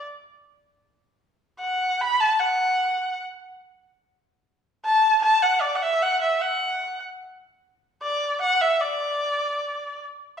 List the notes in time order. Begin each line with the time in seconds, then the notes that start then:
1.59 F#5
2.01 B5
2.20 A5
2.40 F#5
4.84 A5
5.22 A5
5.42 F#5
5.61 D5
5.75 F#5
5.82 E5
6.02 F#5
6.21 E5
6.41 F#5
8.02 D5
8.41 F#5
8.61 E5
8.81 D5